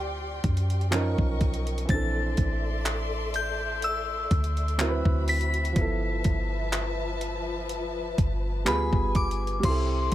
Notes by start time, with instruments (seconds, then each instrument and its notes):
Already playing: 808-style bass D2, grand piano F3 C4 E4 G4, string section G4 D5 G5 C6, synth bell F6
0.44 808-style bass F#2, kick, closed hi-hat
0.57 closed hi-hat
0.70 closed hi-hat
0.81 closed hi-hat
0.91 grand piano F3 C#4 D#4, string section A#4 D#5 C#6, clap, closed hi-hat
0.95 grand piano A#4
1.18 808-style bass B1, kick
1.41 kick, closed hi-hat
1.54 closed hi-hat
1.67 closed hi-hat
1.78 closed hi-hat
1.85 808-style bass A#1, grand piano E3 C4, string section A4 D5, kick, closed hi-hat
1.89 grand piano D4, string section E5 C6, synth bell A6
1.94 grand piano A4
2.37 808-style bass A1, kick, closed hi-hat
2.86 clap, closed hi-hat
3.34 synth bell G6, closed hi-hat
3.82 synth bell E6, closed hi-hat
4.31 808-style bass D2, kick, closed hi-hat
4.44 closed hi-hat
4.57 closed hi-hat
4.68 closed hi-hat
4.78 grand piano F#3 C4 E4, string section C4 F#4 E5 B5, clap, closed hi-hat
4.82 grand piano A#4
4.89 grand piano B4
5.05 808-style bass D2, kick
5.28 synth bell B6, closed hi-hat, open hi-hat
5.41 closed hi-hat
5.54 closed hi-hat
5.65 closed hi-hat
5.72 808-style bass G1, grand piano F3 B3, string section F3 B4 A5, kick, closed hi-hat
5.78 grand piano E4 A4
6.24 808-style bass G1, kick, closed hi-hat
6.73 clap, closed hi-hat
7.21 closed hi-hat
7.69 closed hi-hat
8.18 808-style bass G1, kick, closed hi-hat
8.65 808-style bass D2, grand piano G3 B3 F4, string section G#5, synth bell B5, clap, closed hi-hat
8.69 grand piano G#4
8.93 808-style bass G1, kick
9.15 synth bell D6, kick, closed hi-hat
9.31 closed hi-hat
9.47 closed hi-hat
9.60 808-style bass C2, grand piano G3 C4, string section A4 G5 C6, kick, closed hi-hat, crash
9.65 grand piano E4 A4, synth bell C6